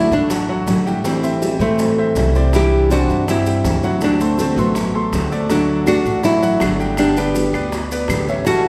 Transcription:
Already playing: steel-string acoustic guitar D3 F#3 A3 E4, grand piano A3 A4 D5, nylon-string guitar E4
0.11 upright bass A1, steel-string acoustic guitar A3 E4 F#4, nylon-string guitar D4, maracas
0.30 grand piano F#3 F#4 F#5, muted steel-string acoustic guitar stroke, high bongo, maracas
0.49 grand piano F#3 F#4 F#5
0.67 upright bass A1, steel-string acoustic guitar D3 F#3 A3 E4 F#4, high bongo, low bongo, maracas
0.86 grand piano G3 G4 G5, steel-string acoustic guitar A3 E4 F#4, maracas
1.04 steel-string acoustic guitar E3 G3 C4 E4, nylon-string guitar A3 C4, high bongo, maracas
1.23 grand piano C4 C5 E5, maracas
1.41 steel-string acoustic guitar E3 G3 C4 E4, high bongo, maracas
1.59 upright bass A2, nylon-string guitar E3 A3, steel-string acoustic guitar G3 C4 E4, grand piano C4 C5 E5, maracas
1.79 muted steel-string acoustic guitar stroke, high bongo, maracas
1.98 grand piano C4 C5 E5, high bongo
2.15 upright bass C2, steel-string acoustic guitar E3 G3 C4 E4, high bongo, low bongo, maracas
2.35 steel-string acoustic guitar G3 C4 E4, grand piano C4 C5 D5, high bongo, maracas
2.53 steel-string acoustic guitar C3 E3 G3 D4 E4, grand piano G3 G4 G5, nylon-string guitar G4, high bongo, maracas
2.90 steel-string acoustic guitar C3 E3 G3 D4 E4, grand piano C4 C5 D5, nylon-string guitar F#4, high bongo, maracas
3.09 upright bass G2, steel-string acoustic guitar G3 D4 E4, maracas
3.28 grand piano G3 G4 G5, nylon-string guitar C4 E4, muted steel-string acoustic guitar stroke, high bongo, maracas
3.46 grand piano G3 G4 G5, maracas
3.64 upright bass D2, steel-string acoustic guitar C3 E3 G3 D4 E4, high bongo, low bongo, maracas
3.83 grand piano F#3 F#4 F#5, steel-string acoustic guitar G3 D4 E4, maracas
4.01 steel-string acoustic guitar D3 A3 C4 F#4, nylon-string guitar D4, high bongo, maracas
4.20 grand piano A3 A4 C5, maracas
4.38 steel-string acoustic guitar D3 A3 C4 F#4, nylon-string guitar C4, high bongo, maracas
4.56 upright bass A1, nylon-string guitar F#3 B3, grand piano A3 A4 C6, steel-string acoustic guitar A3 C4 F#4, high bongo, maracas
4.75 muted steel-string acoustic guitar stroke, high bongo, maracas
4.95 grand piano A3 A4 C6, high bongo
5.12 upright bass D2, steel-string acoustic guitar D3 A3 C4 F#4, high bongo, low bongo, maracas
5.31 grand piano A3 A4 D5, steel-string acoustic guitar A3 C4 F#4, high bongo, maracas
5.50 steel-string acoustic guitar D3 A3 D4 F#4, grand piano F#3 F#4 F#5, nylon-string guitar D4, high bongo, maracas
5.86 steel-string acoustic guitar D3 A3 D4 F#4, grand piano A3 A4 D5, nylon-string guitar F#4, high bongo, claves, maracas
6.04 upright bass A1, steel-string acoustic guitar A3 D4 F#4, maracas
6.23 grand piano F#3 F#4 F#5, nylon-string guitar A3 E4, muted steel-string acoustic guitar stroke, high bongo, maracas
6.42 grand piano F#3 F#4 F#5, maracas
6.60 upright bass G1, steel-string acoustic guitar D3 A3 D4 F#4, nylon-string guitar D4, high bongo, low bongo, claves, maracas
6.79 grand piano G3 G4 G5, steel-string acoustic guitar A3 D4 F#4, maracas
6.97 steel-string acoustic guitar D3 G3 B3 G4, nylon-string guitar D4, high bongo, claves, maracas
7.17 grand piano B3 B4 D5, nylon-string guitar D4 G4, maracas
7.35 steel-string acoustic guitar D3 G3 B3 G4, high bongo, maracas
7.53 upright bass D2, steel-string acoustic guitar G3 B3 G4, grand piano B3 B4 D5, high bongo, claves, maracas
7.72 muted steel-string acoustic guitar stroke, high bongo, maracas
7.90 grand piano B3 B4 D5, high bongo, maracas
8.08 upright bass A1, steel-string acoustic guitar D3 G3 B3 G4, high bongo, low bongo, claves, maracas
8.26 steel-string acoustic guitar G3 B3 G4, grand piano C#4 C#5 E5, high bongo, maracas
8.45 steel-string acoustic guitar E3 G3 C#4 E4, grand piano G3 A4 A5, nylon-string guitar F#4, high bongo, maracas

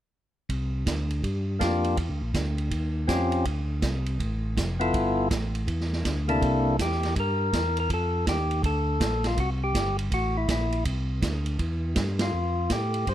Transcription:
0.49 tonewheel organ C2, kick, ride
0.86 tonewheel organ D2, kick, snare, hi-hat pedal, ride
1.10 ride
1.23 tonewheel organ G2, kick, ride
1.59 tonewheel organ F2 A#3 D4 F4 G4, kick, snare, hi-hat pedal, ride
1.84 ride
1.97 tonewheel organ E2, kick, ride
2.09 tonewheel organ D2
2.21 tonewheel organ A#1
2.34 tonewheel organ D2, kick, snare, hi-hat pedal, ride
2.58 ride
2.71 tonewheel organ D#2, kick, ride
3.08 tonewheel organ F2 C4 C#4 F4 G4, kick, snare, hi-hat pedal, ride
3.32 ride
3.45 tonewheel organ D2, kick, ride
3.82 tonewheel organ C2, kick, snare, hi-hat pedal, ride
4.06 ride
4.19 tonewheel organ A1, kick, ride
4.57 tonewheel organ F1, kick, snare, hi-hat pedal, ride
4.79 tonewheel organ B3 E4 F4 A4, ride
4.94 tonewheel organ G1, kick, ride
5.31 tonewheel organ A1, kick, snare, hi-hat pedal, ride
5.55 ride
5.67 tonewheel organ E2, kick, ride
5.81 snare
5.93 snare
6.04 tonewheel organ D2, kick, snare, hi-hat pedal, ride
6.28 tonewheel organ C3 A#3 D4 E4 A4, ride
6.42 tonewheel organ C2, kick, ride
6.79 tonewheel organ E2 G4, kick, snare, hi-hat pedal, ride
6.92 snare
7.03 snare, ride
7.16 tonewheel organ G2 A#4, kick, ride
7.53 tonewheel organ E2, kick, snare, hi-hat pedal, ride
7.77 tonewheel organ A#4, ride
7.90 tonewheel organ F2 A4, kick, ride
8.27 tonewheel organ D#2 G4, kick, snare, hi-hat pedal, ride
8.51 ride
8.63 tonewheel organ D2 A4, kick, ride
9.00 tonewheel organ A#1, kick, snare, hi-hat pedal, ride
9.24 tonewheel organ F4, snare, ride
9.37 tonewheel organ C2 F#4, kick, ride
9.64 tonewheel organ G4
9.74 tonewheel organ G1, kick, snare, hi-hat pedal, ride
9.99 ride
10.11 tonewheel organ A1 F#4, kick, ride
10.37 tonewheel organ E4
10.48 tonewheel organ A#1 E4, kick, snare, hi-hat pedal, ride
10.72 ride
10.85 tonewheel organ C2, kick, ride
11.22 tonewheel organ D2, kick, snare, hi-hat pedal, ride
11.46 ride
11.59 tonewheel organ E2, kick, ride
11.96 tonewheel organ G2, kick, snare, hi-hat pedal, ride
12.19 tonewheel organ F4, snare, ride
12.33 tonewheel organ F2
12.70 tonewheel organ A2 G4, kick, snare, hi-hat pedal, ride
12.94 ride
13.07 tonewheel organ G2 C5, kick, ride

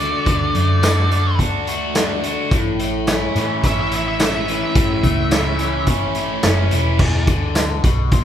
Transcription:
Already playing: picked electric bass D2, overdriven electric guitar A3 D4 F#4, lead electric guitar D5
0.00 overdriven electric guitar D3
0.26 picked electric bass D2, overdriven electric guitar D3, kick, closed hi-hat
0.55 picked electric bass F#2, overdriven electric guitar A3, closed hi-hat
0.82 overdriven electric guitar D4 F#4, snare, closed hi-hat, tambourine
1.10 overdriven electric guitar D3 D4, closed hi-hat
1.38 picked electric bass D2, overdriven electric guitar D4 F#4, kick, closed hi-hat
1.67 overdriven electric guitar A3 F#4, closed hi-hat
1.95 overdriven electric guitar D4, snare, closed hi-hat, tambourine
2.23 overdriven electric guitar D3 F#4, closed hi-hat
2.51 picked electric bass A1, overdriven electric guitar A2, kick, closed hi-hat
2.79 overdriven electric guitar A3, closed hi-hat
3.07 overdriven electric guitar C#4 E4, snare, closed hi-hat, tambourine
3.36 picked electric bass A2, overdriven electric guitar E3 C#4, snare, closed hi-hat
3.63 picked electric bass A1, overdriven electric guitar C#4 E4, lead electric guitar E5, kick, closed hi-hat
3.81 lead electric guitar E5
3.91 overdriven electric guitar A3 E4, closed hi-hat
3.96 lead electric guitar E5
4.08 lead electric guitar E5
4.20 overdriven electric guitar C#4, lead electric guitar E5, snare, closed hi-hat, tambourine
4.48 overdriven electric guitar E3 E4, closed hi-hat
4.75 picked electric bass A1, overdriven electric guitar A2, kick, closed hi-hat
5.03 picked electric bass C#2, overdriven electric guitar A3, kick, closed hi-hat
5.31 overdriven electric guitar C#4 E4, snare, closed hi-hat, tambourine
5.59 overdriven electric guitar E3 C#4, closed hi-hat
5.86 picked electric bass A1, overdriven electric guitar C#4 E4, kick, closed hi-hat
6.15 overdriven electric guitar A3 E4, closed hi-hat
6.43 picked electric bass F#1, overdriven electric guitar C#4, snare, closed hi-hat, tambourine
6.71 picked electric bass E1, overdriven electric guitar E3 E4, closed hi-hat
6.99 picked electric bass E1, overdriven electric guitar E2, kick, crash
7.27 picked electric bass D2, overdriven electric guitar D3, kick, closed hi-hat
7.55 snare, closed hi-hat, tambourine
7.84 picked electric bass B1, overdriven electric guitar B2, kick, closed hi-hat
8.11 picked electric bass A#1, overdriven electric guitar A#2, kick, closed hi-hat

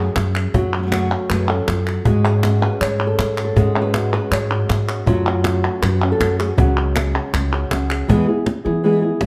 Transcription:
Already playing: nylon-string guitar F#2 A3 C#4 F#4 G#4
0.16 upright bass F#2, muted nylon-string guitar stroke, cajon slap, clap
0.35 clap
0.54 upright bass F#2, nylon-string guitar F#3 F#4, muted nylon-string guitar stroke, cajon bass
0.73 cajon slap
0.78 nylon-string guitar F#3 A3 C#4 F#4
0.82 nylon-string guitar F#3 A3 C#4 F#4
0.87 nylon-string guitar F#3 A3 C#4 F#4
0.91 nylon-string guitar C#3 F#3 A3 C#4 F#4, cajon slap, clap
1.11 nylon-string guitar A3 C#4
1.29 upright bass F#2, nylon-string guitar C#3 F#3 A3 C#4 F#4 B4, clap
1.48 nylon-string guitar A3 C#4 F#4 A4
1.68 upright bass F#2, nylon-string guitar F3, muted nylon-string guitar stroke, cajon slap, clap
1.87 nylon-string guitar F#3, clap
2.05 upright bass G#2, nylon-string guitar G#3 C#4 F#4, cajon bass
2.24 nylon-string guitar C#4 F#4 G#4
2.43 nylon-string guitar G#3 C#4 F#4, cajon slap, clap
2.62 nylon-string guitar C#4 F#4 B4, clap
2.81 upright bass G#2, nylon-string guitar C#5, muted nylon-string guitar stroke, clap
3.00 cajon slap, clap
3.07 nylon-string guitar A4
3.19 upright bass G#2, cajon slap, clap
3.37 nylon-string guitar C#4 F#4, clap
3.45 nylon-string guitar A4
3.56 upright bass G#2, nylon-string guitar G#3 C#4 F#4, cajon bass
3.74 nylon-string guitar C#4 F#4, cajon slap
3.82 nylon-string guitar B4
3.93 nylon-string guitar G#3 C#4 F#4, cajon slap, clap
4.12 nylon-string guitar C#4 F#4 B4
4.31 upright bass G#2, nylon-string guitar C#5, muted nylon-string guitar stroke, clap
4.51 nylon-string guitar F#4, clap
4.69 upright bass G#2, cajon slap, clap
4.88 nylon-string guitar C#4 F#4, clap
5.06 upright bass F#2, nylon-string guitar C#3 F#3 A3 C#4 F4, cajon bass
5.26 nylon-string guitar F#4, clap
5.44 nylon-string guitar C#4, cajon slap, clap
5.64 nylon-string guitar A3 C#4 F#4
5.82 upright bass F#2, nylon-string guitar B4, muted nylon-string guitar stroke, clap
6.01 nylon-string guitar A3 C#4 F#4, cajon slap
6.12 nylon-string guitar A4
6.20 upright bass F#2, nylon-string guitar F#3 A3 C#4 F#4, cajon slap, clap
6.39 nylon-string guitar A3 C#4 F#4 G#4, clap
6.58 upright bass C#2, nylon-string guitar C#3 F#3 G#3 C#4 F#4 G#4, cajon bass
6.77 cajon slap, clap
6.96 cajon slap, clap
7.14 nylon-string guitar C#4 F#4 G#4
7.33 upright bass C#2, muted nylon-string guitar stroke, clap
7.52 nylon-string guitar C#4 F#4 G#4
7.71 upright bass C#2, nylon-string guitar F#3 C#4 F#4 G#4, cajon slap, clap
7.89 nylon-string guitar C#4 F#4 G#4, clap
8.08 upright bass E2, nylon-string guitar E3 G#3 B3 E4 G#4, cajon bass
8.28 nylon-string guitar B3 E4 G#4
8.46 muted nylon-string guitar stroke, cajon slap
8.65 upright bass E3, nylon-string guitar B3 E4 G#4
8.84 nylon-string guitar E3 G#3 B3 E4 G#4, cajon slap
9.02 nylon-string guitar B3 E4 G#4, cajon slap
9.21 upright bass G#2, muted nylon-string guitar stroke, cajon slap

